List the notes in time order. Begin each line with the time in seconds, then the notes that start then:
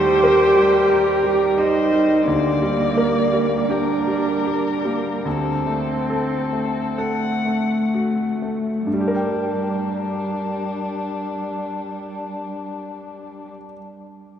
Already playing: D#2 G3 G4 C5
0.24 A#4
0.56 G3
0.89 G4 A#4
1.24 G3
1.58 D#4 G4 C5
1.92 G3
2.26 D2 A#3 D5
2.62 G3
2.98 A#4
3.33 G3
3.69 D4 G4 A#4
4.07 G3
4.45 G4
4.85 G3 A#3
5.25 D2 C4 A4
5.67 A3
6.10 A4
6.53 A3
6.98 A3 A4 F#5
7.45 A3
7.94 F#4
8.42 A3
8.86 G2 G3 D4
8.94 G3
9.01 G4
9.08 A#4
9.15 G5